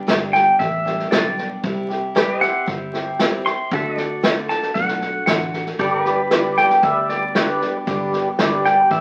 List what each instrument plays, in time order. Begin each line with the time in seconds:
Already playing: pedal steel guitar G4 B4 D5
0.07 fingered electric bass G1, steel-string acoustic guitar G2 D3 G3 B3 D4 G4, snare, hi-hat pedal
0.33 steel-string acoustic guitar G3 B3 D4 G4, pedal steel guitar G5, snare
0.59 fingered electric bass A1, steel-string acoustic guitar G3 B3 D4 G4, pedal steel guitar E5, kick, snare
0.84 steel-string acoustic guitar G3 B3 D4 G4, snare
0.99 snare
1.11 fingered electric bass B1, steel-string acoustic guitar G2 D3 G3 B3 D4 G4, pedal steel guitar D5, snare, hi-hat pedal
1.37 steel-string acoustic guitar G3 B3 D4 G4, snare
1.63 fingered electric bass C2, steel-string acoustic guitar C3 G3 C4 E4 G4, kick, snare
1.89 steel-string acoustic guitar C4 E4 G4, snare
2.15 steel-string acoustic guitar C3 G3 C4 E4 G4, pedal steel guitar G4 B4 D5, snare, hi-hat pedal
2.38 steel-string acoustic guitar G4, pedal steel guitar C5 F#5
2.42 steel-string acoustic guitar C4 E4, pedal steel guitar E5, snare
2.66 fingered electric bass G1, steel-string acoustic guitar G3 C4 E4 G4, kick, snare
2.93 steel-string acoustic guitar C4 E4 G4, snare
3.19 steel-string acoustic guitar C3 G3 C4 E4 G4, snare, hi-hat pedal
3.45 steel-string acoustic guitar C4 E4 G4, pedal steel guitar C6, snare
3.71 fingered electric bass D2, steel-string acoustic guitar D3 A3 D4 F#4 A4, pedal steel guitar F#4 A4 E5, kick, snare
3.97 steel-string acoustic guitar D4 F#4 A4, pedal steel guitar D5, snare
4.23 steel-string acoustic guitar D3 A3 D4 F#4 A4, snare, hi-hat pedal
4.49 steel-string acoustic guitar D4 F#4 A4, pedal steel guitar A5, snare
4.62 snare
4.74 fingered electric bass B1, steel-string acoustic guitar A3 D4 F#4 A4, pedal steel guitar F#5, kick, snare
4.88 snare
5.01 steel-string acoustic guitar D4 F#4 A4, snare
5.26 fingered electric bass A1, steel-string acoustic guitar D3 A3 D4 F#4 A4, pedal steel guitar F#5, snare, hi-hat pedal
5.53 steel-string acoustic guitar D4 F#4 A4, snare
5.66 snare
5.79 fingered electric bass G1, steel-string acoustic guitar G2 D3 G3 B3 D4 G4, tonewheel organ G4 B4 D5, pedal steel guitar G4 A4 D5, kick, snare
6.05 steel-string acoustic guitar G3 B3 D4 G4, pedal steel guitar B4, snare
6.31 steel-string acoustic guitar G2 D3 G3 B3 D4 G4, tonewheel organ G4 B4 D5, snare, hi-hat pedal
6.57 steel-string acoustic guitar G3 B3 D4 G4, pedal steel guitar G5, snare
6.70 snare
6.82 fingered electric bass D2, steel-string acoustic guitar G3 B3 D4 G4, tonewheel organ G4 B4 D5, pedal steel guitar E5, kick, snare
7.09 steel-string acoustic guitar G3 B3 D4 G4, pedal steel guitar D5, snare
7.35 steel-string acoustic guitar G2 D3 G3 B3 D4 G4, tonewheel organ G4 B4 D5, pedal steel guitar B4, snare, hi-hat pedal
7.61 steel-string acoustic guitar G3 B3 D4 G4, snare
7.87 fingered electric bass G1, steel-string acoustic guitar G2 D3 G3 B3 D4 G4, tonewheel organ G4 B4 D5, kick, snare
8.13 steel-string acoustic guitar G3 B3 D4 G4, snare
8.38 fingered electric bass G1, steel-string acoustic guitar G2 D3 G3 B3 D4 G4, tonewheel organ G4 B4 D5, snare, hi-hat pedal
8.64 steel-string acoustic guitar G3 B3 D4 G4, pedal steel guitar G5, snare
8.90 fingered electric bass A1, steel-string acoustic guitar G3 B3 D4 G4, tonewheel organ G4 B4 D5, pedal steel guitar E5, kick, snare